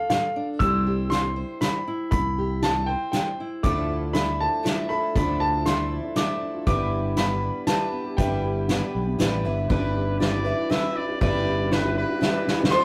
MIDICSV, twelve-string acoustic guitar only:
0, 0, Header, 1, 2, 480
1, 0, Start_track
1, 0, Tempo, 504626
1, 576, Time_signature, 3, 2, 24, 8
1, 12219, End_track
2, 0, Start_track
2, 0, Title_t, "Twelve-string acoustic guitar"
2, 0, Program_c, 0, 25
2, 3465, Note_on_c, 0, 50, 61
2, 3468, Note_on_c, 0, 53, 68
2, 3470, Note_on_c, 0, 62, 67
2, 3471, Note_on_c, 0, 57, 59
2, 3473, Note_on_c, 0, 64, 68
2, 3483, Note_on_c, 0, 69, 68
2, 3921, Note_off_c, 0, 57, 0
2, 3932, Note_on_c, 0, 57, 47
2, 3937, Note_off_c, 0, 62, 0
2, 3938, Note_off_c, 0, 64, 0
2, 3941, Note_off_c, 0, 69, 0
2, 3941, Note_on_c, 0, 62, 55
2, 3942, Note_on_c, 0, 64, 50
2, 3947, Note_off_c, 0, 53, 0
2, 3953, Note_on_c, 0, 69, 49
2, 3971, Note_off_c, 0, 50, 0
2, 4393, Note_off_c, 0, 57, 0
2, 4404, Note_on_c, 0, 57, 53
2, 4409, Note_off_c, 0, 69, 0
2, 4412, Note_off_c, 0, 62, 0
2, 4416, Note_on_c, 0, 62, 53
2, 4417, Note_off_c, 0, 64, 0
2, 4420, Note_on_c, 0, 69, 58
2, 4421, Note_on_c, 0, 64, 62
2, 4648, Note_off_c, 0, 69, 0
2, 4656, Note_off_c, 0, 57, 0
2, 4657, Note_off_c, 0, 64, 0
2, 4659, Note_on_c, 0, 69, 40
2, 4661, Note_off_c, 0, 62, 0
2, 4668, Note_on_c, 0, 64, 37
2, 4671, Note_on_c, 0, 62, 34
2, 4675, Note_on_c, 0, 57, 34
2, 4899, Note_off_c, 0, 57, 0
2, 4903, Note_off_c, 0, 64, 0
2, 4903, Note_off_c, 0, 69, 0
2, 4905, Note_off_c, 0, 62, 0
2, 4905, Note_on_c, 0, 50, 58
2, 4908, Note_on_c, 0, 53, 64
2, 4910, Note_on_c, 0, 57, 65
2, 4914, Note_on_c, 0, 69, 65
2, 4915, Note_on_c, 0, 64, 65
2, 4916, Note_on_c, 0, 62, 67
2, 5372, Note_off_c, 0, 57, 0
2, 5383, Note_on_c, 0, 57, 48
2, 5386, Note_off_c, 0, 50, 0
2, 5387, Note_off_c, 0, 62, 0
2, 5388, Note_off_c, 0, 53, 0
2, 5389, Note_off_c, 0, 69, 0
2, 5391, Note_off_c, 0, 64, 0
2, 5391, Note_on_c, 0, 62, 50
2, 5394, Note_on_c, 0, 64, 58
2, 5400, Note_on_c, 0, 69, 52
2, 5857, Note_off_c, 0, 57, 0
2, 5868, Note_on_c, 0, 57, 60
2, 5873, Note_off_c, 0, 62, 0
2, 5874, Note_off_c, 0, 69, 0
2, 5877, Note_off_c, 0, 64, 0
2, 5877, Note_on_c, 0, 62, 61
2, 5881, Note_on_c, 0, 64, 58
2, 5889, Note_on_c, 0, 69, 65
2, 6341, Note_off_c, 0, 57, 0
2, 6345, Note_on_c, 0, 55, 61
2, 6350, Note_off_c, 0, 62, 0
2, 6351, Note_off_c, 0, 64, 0
2, 6352, Note_off_c, 0, 69, 0
2, 6354, Note_on_c, 0, 62, 68
2, 6355, Note_on_c, 0, 64, 67
2, 6356, Note_on_c, 0, 71, 68
2, 6814, Note_off_c, 0, 55, 0
2, 6818, Note_on_c, 0, 55, 52
2, 6825, Note_off_c, 0, 62, 0
2, 6828, Note_on_c, 0, 62, 52
2, 6829, Note_off_c, 0, 64, 0
2, 6833, Note_off_c, 0, 71, 0
2, 6833, Note_on_c, 0, 64, 56
2, 6837, Note_on_c, 0, 71, 56
2, 7294, Note_off_c, 0, 55, 0
2, 7298, Note_on_c, 0, 55, 58
2, 7303, Note_off_c, 0, 62, 0
2, 7307, Note_on_c, 0, 62, 60
2, 7313, Note_off_c, 0, 64, 0
2, 7313, Note_off_c, 0, 71, 0
2, 7317, Note_on_c, 0, 64, 61
2, 7317, Note_on_c, 0, 71, 62
2, 7785, Note_off_c, 0, 55, 0
2, 7788, Note_off_c, 0, 62, 0
2, 7789, Note_on_c, 0, 55, 67
2, 7791, Note_off_c, 0, 71, 0
2, 7792, Note_on_c, 0, 62, 72
2, 7793, Note_off_c, 0, 64, 0
2, 7795, Note_on_c, 0, 71, 73
2, 7797, Note_on_c, 0, 64, 68
2, 8254, Note_off_c, 0, 55, 0
2, 8263, Note_off_c, 0, 62, 0
2, 8264, Note_off_c, 0, 64, 0
2, 8266, Note_on_c, 0, 55, 55
2, 8271, Note_off_c, 0, 71, 0
2, 8274, Note_on_c, 0, 62, 54
2, 8275, Note_on_c, 0, 64, 57
2, 8282, Note_on_c, 0, 71, 59
2, 8726, Note_off_c, 0, 55, 0
2, 8730, Note_off_c, 0, 62, 0
2, 8738, Note_on_c, 0, 55, 60
2, 8740, Note_off_c, 0, 64, 0
2, 8741, Note_off_c, 0, 71, 0
2, 8741, Note_on_c, 0, 62, 68
2, 8751, Note_on_c, 0, 64, 67
2, 8752, Note_on_c, 0, 71, 70
2, 8975, Note_off_c, 0, 71, 0
2, 8978, Note_off_c, 0, 64, 0
2, 8982, Note_off_c, 0, 55, 0
2, 8984, Note_off_c, 0, 62, 0
2, 8986, Note_on_c, 0, 71, 48
2, 8990, Note_on_c, 0, 64, 46
2, 9002, Note_on_c, 0, 62, 42
2, 9213, Note_off_c, 0, 62, 0
2, 9214, Note_off_c, 0, 64, 0
2, 9223, Note_on_c, 0, 55, 67
2, 9224, Note_on_c, 0, 62, 84
2, 9226, Note_off_c, 0, 71, 0
2, 9226, Note_on_c, 0, 64, 73
2, 9236, Note_on_c, 0, 71, 75
2, 9693, Note_off_c, 0, 55, 0
2, 9704, Note_on_c, 0, 55, 54
2, 9705, Note_off_c, 0, 62, 0
2, 9705, Note_off_c, 0, 64, 0
2, 9707, Note_off_c, 0, 71, 0
2, 9714, Note_on_c, 0, 62, 58
2, 9719, Note_on_c, 0, 71, 63
2, 9721, Note_on_c, 0, 64, 59
2, 9925, Note_off_c, 0, 71, 0
2, 9936, Note_on_c, 0, 71, 50
2, 9939, Note_off_c, 0, 64, 0
2, 9945, Note_off_c, 0, 55, 0
2, 9950, Note_off_c, 0, 62, 0
2, 9950, Note_on_c, 0, 64, 47
2, 9960, Note_on_c, 0, 62, 42
2, 10174, Note_on_c, 0, 55, 68
2, 10176, Note_off_c, 0, 62, 0
2, 10177, Note_off_c, 0, 64, 0
2, 10180, Note_off_c, 0, 71, 0
2, 10187, Note_on_c, 0, 62, 67
2, 10189, Note_on_c, 0, 64, 69
2, 10196, Note_on_c, 0, 71, 76
2, 10650, Note_off_c, 0, 55, 0
2, 10653, Note_off_c, 0, 62, 0
2, 10660, Note_off_c, 0, 64, 0
2, 10662, Note_off_c, 0, 71, 0
2, 10662, Note_on_c, 0, 55, 75
2, 10665, Note_on_c, 0, 62, 82
2, 10671, Note_on_c, 0, 64, 79
2, 10673, Note_on_c, 0, 71, 85
2, 11133, Note_off_c, 0, 55, 0
2, 11142, Note_off_c, 0, 64, 0
2, 11143, Note_off_c, 0, 62, 0
2, 11144, Note_on_c, 0, 55, 62
2, 11147, Note_off_c, 0, 71, 0
2, 11153, Note_on_c, 0, 64, 65
2, 11156, Note_on_c, 0, 62, 65
2, 11163, Note_on_c, 0, 71, 71
2, 11600, Note_off_c, 0, 55, 0
2, 11612, Note_on_c, 0, 55, 61
2, 11614, Note_off_c, 0, 62, 0
2, 11614, Note_off_c, 0, 64, 0
2, 11618, Note_off_c, 0, 71, 0
2, 11625, Note_on_c, 0, 64, 74
2, 11626, Note_on_c, 0, 62, 76
2, 11629, Note_on_c, 0, 71, 79
2, 12094, Note_off_c, 0, 55, 0
2, 12095, Note_on_c, 0, 53, 75
2, 12099, Note_on_c, 0, 57, 81
2, 12100, Note_off_c, 0, 62, 0
2, 12101, Note_off_c, 0, 64, 0
2, 12103, Note_off_c, 0, 71, 0
2, 12103, Note_on_c, 0, 60, 80
2, 12108, Note_on_c, 0, 65, 73
2, 12109, Note_on_c, 0, 72, 87
2, 12219, Note_off_c, 0, 53, 0
2, 12219, Note_off_c, 0, 57, 0
2, 12219, Note_off_c, 0, 60, 0
2, 12219, Note_off_c, 0, 65, 0
2, 12219, Note_off_c, 0, 72, 0
2, 12219, End_track
0, 0, End_of_file